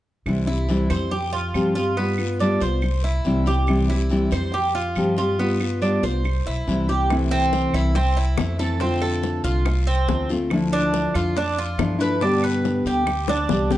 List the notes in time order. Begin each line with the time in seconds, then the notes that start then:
0.26 C2 C3 E3 G3 C4 E4, long guiro, claves
0.47 G3 C4 E4
0.68 C3 E3 G3 C4 E4, short guiro
0.90 F2 G3 C4 E4 C5, short guiro, claves
1.11 G4, muted nylon-string guitar stroke, long guiro
1.33 F4
1.54 G2 F3 G3 C4 G4, short guiro, claves
1.75 G3 C4 F4 G4, short guiro
1.97 G3 B3 F4, long guiro
2.18 B3 F4, claves
2.40 G3 B3 D4 F4, short guiro
2.61 C2 B3 F4 C5, short guiro
2.82 muted nylon-string guitar stroke, long guiro, claves
3.04 E4
3.25 C2 C3 E3 G3 C4 E4, short guiro
3.46 G3 C4 E4 G4, short guiro
3.67 C3 E3 G3 C4 E4, long guiro, claves
3.89 G3 C4 E4
4.10 C3 E3 G3 C4 E4, short guiro
4.31 F2 G3 C4 E4 C5, short guiro, claves
4.52 G4, muted nylon-string guitar stroke, long guiro
4.75 F4
4.95 G2 F3 G3 C4 G4, short guiro, claves
5.17 G3 C4 F4 G4, short guiro
5.39 G3 B3 F4, long guiro
5.60 B3 F4, claves
5.82 G3 B3 D4 F4, short guiro
6.03 C2 B3 F4 C5, short guiro
6.24 muted nylon-string guitar stroke, long guiro, claves
6.46 B1 E4
6.67 C2 C3 E3 G3 C4 E4, short guiro
6.88 G3 C4 E4 G4, short guiro
7.09 C3 E3 A3 C4 E4, high bongo, long guiro, claves
7.31 C4
7.53 high bongo, short guiro
7.73 C2 E4, short guiro, claves
7.95 C4, muted nylon-string guitar stroke, high bongo, long guiro
8.17 E4
8.37 F2 E3 A3 C4 E4, high bongo, low bongo, short guiro, claves
8.59 E3 A3 C4 E4 A4, short guiro
8.80 D3 A3 C4 F4, high bongo, long guiro
9.02 A4, high bongo, claves
9.23 high bongo, short guiro
9.44 C2 F4, high bongo, short guiro
9.65 muted nylon-string guitar stroke, high bongo, long guiro, claves
9.87 C4
10.08 D2 D3 A3 C4 F4, high bongo, low bongo, short guiro
10.29 A3 C4 F4, high bongo, short guiro
10.50 D3 F3 A3 D4 E4, high bongo, long guiro, claves
10.73 D4
10.94 high bongo, short guiro
11.14 F2 F4, short guiro, claves
11.36 D4, muted nylon-string guitar stroke, high bongo, long guiro
11.58 F4
11.78 G2 F3 A3 D4 E4, high bongo, low bongo, short guiro, claves
11.99 F3 A3 D4 E4 B4, short guiro
12.21 B2 D3 G3 B3 D4 G4, high bongo, long guiro
12.43 B4, high bongo, claves
12.65 high bongo, short guiro
12.85 D2 G4, high bongo, short guiro
13.07 muted nylon-string guitar stroke, high bongo, long guiro, claves
13.28 D4, high bongo
13.49 C2 D3 G3 B3 G4, low bongo, short guiro
13.71 D3 G3 B3 G4, low bongo, short guiro